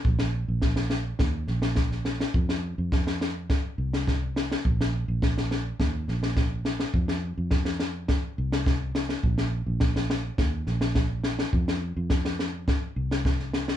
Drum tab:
SD |-o--ooo-o-oooooo|-o--ooo-o--oo-oo|-o--ooo-o-ooo-oo|-o--ooo-o--oo-oo|
BD |o---o---o---o---|o---o---o---o---|o---o---o---o---|o---o---o---o---|

SD |-o--ooo-o-ooo-oo|-o--ooo-o--ooooo|
BD |o---o---o---o---|o---o---o---o---|